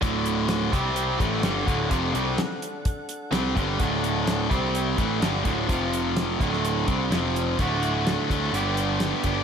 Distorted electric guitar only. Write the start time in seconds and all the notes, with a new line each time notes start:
0.01 D2 A2 D3
0.72 C3 G3 C4
1.19 A2 E3 A3
1.42 G2 D3 G3
1.66 D2 A2 D3
1.89 F2 C3 F3
2.13 C3 G3 C4
3.31 C3 G3 C4
3.55 G2 D3 G3
3.80 D2 A2 D3
4.50 C3 G3 C4
4.97 A2 E3 A3
5.21 G2 D3 G3
5.44 D2 A2 D3
5.68 F2 C3 F3
6.40 D2 A2 D3
6.87 C3 G3 C4
7.12 F2 C3 F3
7.58 D2 A2 D3 A3 F#4
8.29 D2 A2 D3 A3 F#4
8.53 G2 D3 G3 B3 D4 G4
9.24 G2 D3 G3 B3 D4 G4